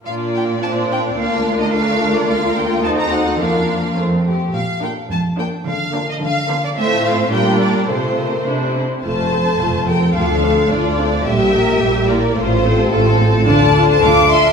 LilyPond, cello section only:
\new Staff \with { instrumentName = "Cello section" } { \clef bass \time 2/4 \key bes \major \tempo 4 = 108 bes,2 | d,2 | d,4 ees,4 | f,4 f,8 r8 |
bes,4 f,4 | d4 d4 | \key f \major a,4 bes,4 | c4 c8 r8 |
f,4 f,4 | d,4 d,4 | bes,4 bes,4 | a,4 a,4 |
d4 d4 | }